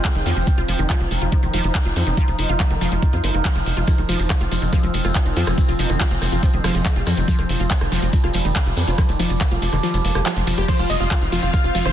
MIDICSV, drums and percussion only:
0, 0, Header, 1, 2, 480
1, 0, Start_track
1, 0, Tempo, 425532
1, 532, Time_signature, 4, 2, 24, 8
1, 13451, End_track
2, 0, Start_track
2, 0, Title_t, "Drums"
2, 52, Note_on_c, 9, 36, 123
2, 52, Note_on_c, 9, 39, 127
2, 52, Note_on_c, 9, 42, 82
2, 165, Note_off_c, 9, 36, 0
2, 165, Note_off_c, 9, 39, 0
2, 165, Note_off_c, 9, 42, 0
2, 172, Note_on_c, 9, 42, 56
2, 285, Note_off_c, 9, 42, 0
2, 292, Note_on_c, 9, 46, 95
2, 405, Note_off_c, 9, 46, 0
2, 412, Note_on_c, 9, 42, 59
2, 525, Note_off_c, 9, 42, 0
2, 532, Note_on_c, 9, 36, 116
2, 532, Note_on_c, 9, 42, 74
2, 645, Note_off_c, 9, 36, 0
2, 645, Note_off_c, 9, 42, 0
2, 652, Note_on_c, 9, 42, 53
2, 765, Note_off_c, 9, 42, 0
2, 772, Note_on_c, 9, 46, 109
2, 885, Note_off_c, 9, 46, 0
2, 892, Note_on_c, 9, 42, 51
2, 1005, Note_off_c, 9, 42, 0
2, 1012, Note_on_c, 9, 36, 124
2, 1012, Note_on_c, 9, 39, 121
2, 1012, Note_on_c, 9, 42, 79
2, 1125, Note_off_c, 9, 36, 0
2, 1125, Note_off_c, 9, 39, 0
2, 1125, Note_off_c, 9, 42, 0
2, 1132, Note_on_c, 9, 42, 51
2, 1245, Note_off_c, 9, 42, 0
2, 1252, Note_on_c, 9, 46, 99
2, 1365, Note_off_c, 9, 46, 0
2, 1372, Note_on_c, 9, 42, 50
2, 1485, Note_off_c, 9, 42, 0
2, 1492, Note_on_c, 9, 36, 127
2, 1492, Note_on_c, 9, 42, 77
2, 1605, Note_off_c, 9, 36, 0
2, 1605, Note_off_c, 9, 42, 0
2, 1612, Note_on_c, 9, 42, 47
2, 1725, Note_off_c, 9, 42, 0
2, 1732, Note_on_c, 9, 46, 114
2, 1845, Note_off_c, 9, 46, 0
2, 1852, Note_on_c, 9, 42, 54
2, 1965, Note_off_c, 9, 42, 0
2, 1972, Note_on_c, 9, 36, 127
2, 1972, Note_on_c, 9, 39, 121
2, 1972, Note_on_c, 9, 42, 81
2, 2085, Note_off_c, 9, 36, 0
2, 2085, Note_off_c, 9, 39, 0
2, 2085, Note_off_c, 9, 42, 0
2, 2092, Note_on_c, 9, 42, 53
2, 2205, Note_off_c, 9, 42, 0
2, 2212, Note_on_c, 9, 46, 97
2, 2325, Note_off_c, 9, 46, 0
2, 2332, Note_on_c, 9, 42, 59
2, 2445, Note_off_c, 9, 42, 0
2, 2452, Note_on_c, 9, 36, 124
2, 2452, Note_on_c, 9, 42, 74
2, 2565, Note_off_c, 9, 36, 0
2, 2565, Note_off_c, 9, 42, 0
2, 2572, Note_on_c, 9, 42, 51
2, 2685, Note_off_c, 9, 42, 0
2, 2692, Note_on_c, 9, 46, 113
2, 2805, Note_off_c, 9, 46, 0
2, 2812, Note_on_c, 9, 42, 50
2, 2925, Note_off_c, 9, 42, 0
2, 2932, Note_on_c, 9, 36, 123
2, 2932, Note_on_c, 9, 39, 123
2, 2932, Note_on_c, 9, 42, 75
2, 3045, Note_off_c, 9, 36, 0
2, 3045, Note_off_c, 9, 39, 0
2, 3045, Note_off_c, 9, 42, 0
2, 3052, Note_on_c, 9, 42, 47
2, 3165, Note_off_c, 9, 42, 0
2, 3172, Note_on_c, 9, 46, 99
2, 3285, Note_off_c, 9, 46, 0
2, 3292, Note_on_c, 9, 42, 50
2, 3405, Note_off_c, 9, 42, 0
2, 3412, Note_on_c, 9, 36, 125
2, 3412, Note_on_c, 9, 42, 74
2, 3525, Note_off_c, 9, 36, 0
2, 3525, Note_off_c, 9, 42, 0
2, 3532, Note_on_c, 9, 42, 46
2, 3645, Note_off_c, 9, 42, 0
2, 3652, Note_on_c, 9, 46, 112
2, 3765, Note_off_c, 9, 46, 0
2, 3772, Note_on_c, 9, 42, 51
2, 3885, Note_off_c, 9, 42, 0
2, 3892, Note_on_c, 9, 36, 123
2, 3892, Note_on_c, 9, 39, 118
2, 3892, Note_on_c, 9, 42, 75
2, 4005, Note_off_c, 9, 36, 0
2, 4005, Note_off_c, 9, 39, 0
2, 4005, Note_off_c, 9, 42, 0
2, 4012, Note_on_c, 9, 42, 52
2, 4125, Note_off_c, 9, 42, 0
2, 4132, Note_on_c, 9, 46, 95
2, 4245, Note_off_c, 9, 46, 0
2, 4252, Note_on_c, 9, 42, 56
2, 4363, Note_on_c, 9, 70, 51
2, 4365, Note_off_c, 9, 42, 0
2, 4372, Note_on_c, 9, 36, 118
2, 4372, Note_on_c, 9, 37, 41
2, 4372, Note_on_c, 9, 42, 72
2, 4476, Note_off_c, 9, 70, 0
2, 4485, Note_off_c, 9, 36, 0
2, 4485, Note_off_c, 9, 37, 0
2, 4485, Note_off_c, 9, 42, 0
2, 4492, Note_on_c, 9, 42, 52
2, 4605, Note_off_c, 9, 42, 0
2, 4612, Note_on_c, 9, 46, 108
2, 4614, Note_on_c, 9, 70, 87
2, 4725, Note_off_c, 9, 46, 0
2, 4727, Note_off_c, 9, 70, 0
2, 4732, Note_on_c, 9, 42, 50
2, 4736, Note_on_c, 9, 70, 36
2, 4845, Note_off_c, 9, 42, 0
2, 4849, Note_off_c, 9, 70, 0
2, 4852, Note_on_c, 9, 36, 121
2, 4852, Note_on_c, 9, 37, 85
2, 4852, Note_on_c, 9, 39, 115
2, 4852, Note_on_c, 9, 42, 77
2, 4857, Note_on_c, 9, 70, 51
2, 4965, Note_off_c, 9, 36, 0
2, 4965, Note_off_c, 9, 37, 0
2, 4965, Note_off_c, 9, 39, 0
2, 4965, Note_off_c, 9, 42, 0
2, 4970, Note_off_c, 9, 70, 0
2, 4973, Note_on_c, 9, 42, 50
2, 5085, Note_off_c, 9, 42, 0
2, 5092, Note_on_c, 9, 46, 97
2, 5097, Note_on_c, 9, 70, 93
2, 5205, Note_off_c, 9, 46, 0
2, 5209, Note_off_c, 9, 70, 0
2, 5210, Note_on_c, 9, 70, 41
2, 5212, Note_on_c, 9, 42, 49
2, 5323, Note_off_c, 9, 70, 0
2, 5325, Note_off_c, 9, 42, 0
2, 5328, Note_on_c, 9, 70, 56
2, 5332, Note_on_c, 9, 36, 119
2, 5333, Note_on_c, 9, 37, 42
2, 5333, Note_on_c, 9, 42, 78
2, 5441, Note_off_c, 9, 70, 0
2, 5445, Note_off_c, 9, 36, 0
2, 5446, Note_off_c, 9, 37, 0
2, 5446, Note_off_c, 9, 42, 0
2, 5453, Note_on_c, 9, 42, 49
2, 5566, Note_off_c, 9, 42, 0
2, 5573, Note_on_c, 9, 46, 109
2, 5573, Note_on_c, 9, 70, 98
2, 5685, Note_off_c, 9, 46, 0
2, 5686, Note_off_c, 9, 70, 0
2, 5693, Note_on_c, 9, 37, 41
2, 5693, Note_on_c, 9, 42, 52
2, 5693, Note_on_c, 9, 70, 40
2, 5806, Note_off_c, 9, 37, 0
2, 5806, Note_off_c, 9, 42, 0
2, 5806, Note_off_c, 9, 70, 0
2, 5812, Note_on_c, 9, 36, 119
2, 5813, Note_on_c, 9, 39, 117
2, 5813, Note_on_c, 9, 42, 77
2, 5813, Note_on_c, 9, 70, 51
2, 5925, Note_off_c, 9, 36, 0
2, 5925, Note_off_c, 9, 39, 0
2, 5925, Note_off_c, 9, 42, 0
2, 5926, Note_off_c, 9, 70, 0
2, 5932, Note_on_c, 9, 42, 53
2, 6045, Note_off_c, 9, 42, 0
2, 6048, Note_on_c, 9, 70, 97
2, 6053, Note_on_c, 9, 46, 98
2, 6161, Note_off_c, 9, 70, 0
2, 6165, Note_off_c, 9, 46, 0
2, 6168, Note_on_c, 9, 70, 40
2, 6173, Note_on_c, 9, 37, 81
2, 6173, Note_on_c, 9, 42, 57
2, 6281, Note_off_c, 9, 70, 0
2, 6285, Note_off_c, 9, 37, 0
2, 6285, Note_off_c, 9, 42, 0
2, 6292, Note_on_c, 9, 36, 114
2, 6293, Note_on_c, 9, 42, 79
2, 6295, Note_on_c, 9, 70, 51
2, 6405, Note_off_c, 9, 36, 0
2, 6405, Note_off_c, 9, 42, 0
2, 6408, Note_off_c, 9, 70, 0
2, 6413, Note_on_c, 9, 42, 55
2, 6416, Note_on_c, 9, 70, 36
2, 6525, Note_off_c, 9, 42, 0
2, 6528, Note_off_c, 9, 70, 0
2, 6532, Note_on_c, 9, 46, 102
2, 6534, Note_on_c, 9, 70, 87
2, 6645, Note_off_c, 9, 46, 0
2, 6645, Note_off_c, 9, 70, 0
2, 6645, Note_on_c, 9, 70, 37
2, 6653, Note_on_c, 9, 37, 41
2, 6653, Note_on_c, 9, 42, 50
2, 6758, Note_off_c, 9, 70, 0
2, 6766, Note_off_c, 9, 37, 0
2, 6766, Note_off_c, 9, 42, 0
2, 6772, Note_on_c, 9, 36, 115
2, 6773, Note_on_c, 9, 39, 117
2, 6773, Note_on_c, 9, 42, 80
2, 6780, Note_on_c, 9, 70, 55
2, 6885, Note_off_c, 9, 36, 0
2, 6885, Note_off_c, 9, 39, 0
2, 6885, Note_off_c, 9, 42, 0
2, 6892, Note_off_c, 9, 70, 0
2, 6892, Note_on_c, 9, 42, 54
2, 6892, Note_on_c, 9, 70, 33
2, 7004, Note_off_c, 9, 70, 0
2, 7005, Note_off_c, 9, 42, 0
2, 7013, Note_on_c, 9, 37, 43
2, 7013, Note_on_c, 9, 46, 90
2, 7017, Note_on_c, 9, 70, 88
2, 7125, Note_off_c, 9, 37, 0
2, 7125, Note_off_c, 9, 46, 0
2, 7130, Note_off_c, 9, 70, 0
2, 7132, Note_on_c, 9, 42, 52
2, 7139, Note_on_c, 9, 70, 37
2, 7245, Note_off_c, 9, 42, 0
2, 7252, Note_off_c, 9, 70, 0
2, 7252, Note_on_c, 9, 36, 116
2, 7253, Note_on_c, 9, 42, 78
2, 7257, Note_on_c, 9, 70, 46
2, 7365, Note_off_c, 9, 36, 0
2, 7365, Note_off_c, 9, 42, 0
2, 7369, Note_off_c, 9, 70, 0
2, 7372, Note_on_c, 9, 42, 49
2, 7485, Note_off_c, 9, 42, 0
2, 7492, Note_on_c, 9, 37, 85
2, 7492, Note_on_c, 9, 46, 106
2, 7492, Note_on_c, 9, 70, 92
2, 7605, Note_off_c, 9, 37, 0
2, 7605, Note_off_c, 9, 46, 0
2, 7605, Note_off_c, 9, 70, 0
2, 7605, Note_on_c, 9, 70, 41
2, 7612, Note_on_c, 9, 42, 53
2, 7717, Note_off_c, 9, 70, 0
2, 7725, Note_off_c, 9, 42, 0
2, 7732, Note_on_c, 9, 36, 111
2, 7732, Note_on_c, 9, 39, 111
2, 7732, Note_on_c, 9, 42, 81
2, 7734, Note_on_c, 9, 70, 51
2, 7845, Note_off_c, 9, 36, 0
2, 7845, Note_off_c, 9, 39, 0
2, 7845, Note_off_c, 9, 42, 0
2, 7846, Note_off_c, 9, 70, 0
2, 7853, Note_on_c, 9, 42, 53
2, 7965, Note_off_c, 9, 42, 0
2, 7967, Note_on_c, 9, 70, 83
2, 7972, Note_on_c, 9, 37, 42
2, 7972, Note_on_c, 9, 46, 87
2, 8080, Note_off_c, 9, 70, 0
2, 8085, Note_off_c, 9, 37, 0
2, 8085, Note_off_c, 9, 46, 0
2, 8091, Note_on_c, 9, 70, 36
2, 8092, Note_on_c, 9, 42, 60
2, 8204, Note_off_c, 9, 70, 0
2, 8205, Note_off_c, 9, 42, 0
2, 8212, Note_on_c, 9, 36, 109
2, 8213, Note_on_c, 9, 42, 80
2, 8217, Note_on_c, 9, 70, 55
2, 8325, Note_off_c, 9, 36, 0
2, 8325, Note_off_c, 9, 42, 0
2, 8330, Note_off_c, 9, 70, 0
2, 8333, Note_on_c, 9, 37, 42
2, 8333, Note_on_c, 9, 42, 56
2, 8445, Note_off_c, 9, 37, 0
2, 8445, Note_off_c, 9, 42, 0
2, 8452, Note_on_c, 9, 46, 104
2, 8452, Note_on_c, 9, 70, 84
2, 8565, Note_off_c, 9, 46, 0
2, 8565, Note_off_c, 9, 70, 0
2, 8572, Note_on_c, 9, 42, 54
2, 8572, Note_on_c, 9, 70, 34
2, 8684, Note_off_c, 9, 70, 0
2, 8685, Note_off_c, 9, 42, 0
2, 8692, Note_on_c, 9, 36, 115
2, 8692, Note_on_c, 9, 39, 122
2, 8692, Note_on_c, 9, 42, 87
2, 8698, Note_on_c, 9, 70, 59
2, 8805, Note_off_c, 9, 36, 0
2, 8805, Note_off_c, 9, 39, 0
2, 8805, Note_off_c, 9, 42, 0
2, 8810, Note_off_c, 9, 70, 0
2, 8812, Note_on_c, 9, 37, 80
2, 8812, Note_on_c, 9, 42, 52
2, 8925, Note_off_c, 9, 37, 0
2, 8925, Note_off_c, 9, 42, 0
2, 8932, Note_on_c, 9, 46, 90
2, 8934, Note_on_c, 9, 70, 95
2, 9045, Note_off_c, 9, 46, 0
2, 9046, Note_off_c, 9, 70, 0
2, 9051, Note_on_c, 9, 70, 36
2, 9052, Note_on_c, 9, 42, 53
2, 9164, Note_off_c, 9, 70, 0
2, 9165, Note_off_c, 9, 42, 0
2, 9171, Note_on_c, 9, 70, 46
2, 9172, Note_on_c, 9, 36, 114
2, 9172, Note_on_c, 9, 42, 85
2, 9284, Note_off_c, 9, 70, 0
2, 9285, Note_off_c, 9, 36, 0
2, 9285, Note_off_c, 9, 42, 0
2, 9292, Note_on_c, 9, 37, 39
2, 9292, Note_on_c, 9, 42, 53
2, 9400, Note_on_c, 9, 70, 84
2, 9405, Note_off_c, 9, 37, 0
2, 9405, Note_off_c, 9, 42, 0
2, 9412, Note_on_c, 9, 46, 102
2, 9513, Note_off_c, 9, 70, 0
2, 9525, Note_off_c, 9, 46, 0
2, 9532, Note_on_c, 9, 42, 55
2, 9535, Note_on_c, 9, 70, 36
2, 9645, Note_off_c, 9, 42, 0
2, 9648, Note_off_c, 9, 70, 0
2, 9652, Note_on_c, 9, 36, 113
2, 9652, Note_on_c, 9, 37, 42
2, 9652, Note_on_c, 9, 39, 118
2, 9652, Note_on_c, 9, 42, 84
2, 9657, Note_on_c, 9, 70, 55
2, 9765, Note_off_c, 9, 36, 0
2, 9765, Note_off_c, 9, 37, 0
2, 9765, Note_off_c, 9, 39, 0
2, 9765, Note_off_c, 9, 42, 0
2, 9770, Note_off_c, 9, 70, 0
2, 9772, Note_on_c, 9, 42, 58
2, 9885, Note_off_c, 9, 42, 0
2, 9888, Note_on_c, 9, 70, 82
2, 9892, Note_on_c, 9, 46, 92
2, 10001, Note_off_c, 9, 70, 0
2, 10005, Note_off_c, 9, 46, 0
2, 10011, Note_on_c, 9, 70, 37
2, 10012, Note_on_c, 9, 42, 61
2, 10124, Note_off_c, 9, 70, 0
2, 10125, Note_off_c, 9, 42, 0
2, 10128, Note_on_c, 9, 70, 52
2, 10132, Note_on_c, 9, 36, 116
2, 10132, Note_on_c, 9, 37, 77
2, 10132, Note_on_c, 9, 42, 83
2, 10241, Note_off_c, 9, 70, 0
2, 10245, Note_off_c, 9, 36, 0
2, 10245, Note_off_c, 9, 37, 0
2, 10245, Note_off_c, 9, 42, 0
2, 10251, Note_on_c, 9, 70, 35
2, 10252, Note_on_c, 9, 42, 59
2, 10363, Note_off_c, 9, 70, 0
2, 10365, Note_off_c, 9, 42, 0
2, 10372, Note_on_c, 9, 46, 103
2, 10375, Note_on_c, 9, 70, 85
2, 10485, Note_off_c, 9, 46, 0
2, 10488, Note_off_c, 9, 70, 0
2, 10489, Note_on_c, 9, 70, 39
2, 10492, Note_on_c, 9, 42, 55
2, 10602, Note_off_c, 9, 70, 0
2, 10605, Note_off_c, 9, 42, 0
2, 10612, Note_on_c, 9, 36, 116
2, 10612, Note_on_c, 9, 37, 41
2, 10612, Note_on_c, 9, 39, 121
2, 10612, Note_on_c, 9, 42, 88
2, 10621, Note_on_c, 9, 70, 59
2, 10725, Note_off_c, 9, 36, 0
2, 10725, Note_off_c, 9, 37, 0
2, 10725, Note_off_c, 9, 39, 0
2, 10725, Note_off_c, 9, 42, 0
2, 10730, Note_off_c, 9, 70, 0
2, 10730, Note_on_c, 9, 70, 38
2, 10732, Note_on_c, 9, 42, 55
2, 10843, Note_off_c, 9, 70, 0
2, 10845, Note_off_c, 9, 42, 0
2, 10850, Note_on_c, 9, 70, 92
2, 10852, Note_on_c, 9, 46, 92
2, 10963, Note_off_c, 9, 70, 0
2, 10965, Note_off_c, 9, 46, 0
2, 10970, Note_on_c, 9, 70, 36
2, 10972, Note_on_c, 9, 37, 39
2, 10972, Note_on_c, 9, 42, 55
2, 11082, Note_off_c, 9, 70, 0
2, 11085, Note_off_c, 9, 37, 0
2, 11085, Note_off_c, 9, 42, 0
2, 11091, Note_on_c, 9, 70, 48
2, 11092, Note_on_c, 9, 42, 87
2, 11204, Note_off_c, 9, 70, 0
2, 11205, Note_off_c, 9, 42, 0
2, 11209, Note_on_c, 9, 70, 37
2, 11212, Note_on_c, 9, 42, 53
2, 11322, Note_off_c, 9, 70, 0
2, 11325, Note_off_c, 9, 42, 0
2, 11332, Note_on_c, 9, 46, 105
2, 11334, Note_on_c, 9, 70, 94
2, 11445, Note_off_c, 9, 46, 0
2, 11447, Note_off_c, 9, 70, 0
2, 11450, Note_on_c, 9, 70, 36
2, 11452, Note_on_c, 9, 37, 78
2, 11452, Note_on_c, 9, 42, 57
2, 11563, Note_off_c, 9, 70, 0
2, 11565, Note_off_c, 9, 37, 0
2, 11565, Note_off_c, 9, 42, 0
2, 11565, Note_on_c, 9, 70, 58
2, 11572, Note_on_c, 9, 39, 122
2, 11572, Note_on_c, 9, 42, 86
2, 11678, Note_off_c, 9, 70, 0
2, 11685, Note_off_c, 9, 39, 0
2, 11685, Note_off_c, 9, 42, 0
2, 11692, Note_on_c, 9, 42, 59
2, 11694, Note_on_c, 9, 70, 38
2, 11805, Note_off_c, 9, 42, 0
2, 11807, Note_off_c, 9, 70, 0
2, 11812, Note_on_c, 9, 46, 92
2, 11817, Note_on_c, 9, 70, 92
2, 11925, Note_off_c, 9, 46, 0
2, 11930, Note_off_c, 9, 70, 0
2, 11932, Note_on_c, 9, 37, 39
2, 11932, Note_on_c, 9, 42, 65
2, 11941, Note_on_c, 9, 70, 42
2, 12045, Note_off_c, 9, 37, 0
2, 12045, Note_off_c, 9, 42, 0
2, 12050, Note_off_c, 9, 70, 0
2, 12050, Note_on_c, 9, 70, 54
2, 12052, Note_on_c, 9, 36, 117
2, 12052, Note_on_c, 9, 37, 38
2, 12052, Note_on_c, 9, 42, 94
2, 12052, Note_on_c, 9, 49, 105
2, 12162, Note_off_c, 9, 70, 0
2, 12165, Note_off_c, 9, 36, 0
2, 12165, Note_off_c, 9, 37, 0
2, 12165, Note_off_c, 9, 42, 0
2, 12165, Note_off_c, 9, 49, 0
2, 12172, Note_on_c, 9, 42, 43
2, 12285, Note_off_c, 9, 42, 0
2, 12289, Note_on_c, 9, 70, 96
2, 12292, Note_on_c, 9, 46, 107
2, 12402, Note_off_c, 9, 70, 0
2, 12405, Note_off_c, 9, 46, 0
2, 12411, Note_on_c, 9, 70, 38
2, 12412, Note_on_c, 9, 42, 42
2, 12524, Note_off_c, 9, 70, 0
2, 12525, Note_off_c, 9, 42, 0
2, 12528, Note_on_c, 9, 70, 62
2, 12532, Note_on_c, 9, 36, 124
2, 12532, Note_on_c, 9, 37, 76
2, 12532, Note_on_c, 9, 39, 127
2, 12532, Note_on_c, 9, 42, 101
2, 12641, Note_off_c, 9, 70, 0
2, 12645, Note_off_c, 9, 36, 0
2, 12645, Note_off_c, 9, 37, 0
2, 12645, Note_off_c, 9, 39, 0
2, 12645, Note_off_c, 9, 42, 0
2, 12652, Note_on_c, 9, 42, 42
2, 12765, Note_off_c, 9, 42, 0
2, 12772, Note_on_c, 9, 46, 93
2, 12776, Note_on_c, 9, 70, 102
2, 12885, Note_off_c, 9, 46, 0
2, 12889, Note_off_c, 9, 70, 0
2, 12891, Note_on_c, 9, 70, 45
2, 12892, Note_on_c, 9, 42, 40
2, 13003, Note_off_c, 9, 70, 0
2, 13005, Note_off_c, 9, 42, 0
2, 13012, Note_on_c, 9, 36, 118
2, 13012, Note_on_c, 9, 37, 40
2, 13012, Note_on_c, 9, 42, 101
2, 13015, Note_on_c, 9, 70, 47
2, 13125, Note_off_c, 9, 36, 0
2, 13125, Note_off_c, 9, 37, 0
2, 13125, Note_off_c, 9, 42, 0
2, 13128, Note_off_c, 9, 70, 0
2, 13132, Note_on_c, 9, 42, 39
2, 13245, Note_off_c, 9, 42, 0
2, 13250, Note_on_c, 9, 70, 105
2, 13252, Note_on_c, 9, 46, 112
2, 13363, Note_off_c, 9, 70, 0
2, 13365, Note_off_c, 9, 46, 0
2, 13372, Note_on_c, 9, 37, 39
2, 13372, Note_on_c, 9, 42, 43
2, 13374, Note_on_c, 9, 70, 36
2, 13451, Note_off_c, 9, 37, 0
2, 13451, Note_off_c, 9, 42, 0
2, 13451, Note_off_c, 9, 70, 0
2, 13451, End_track
0, 0, End_of_file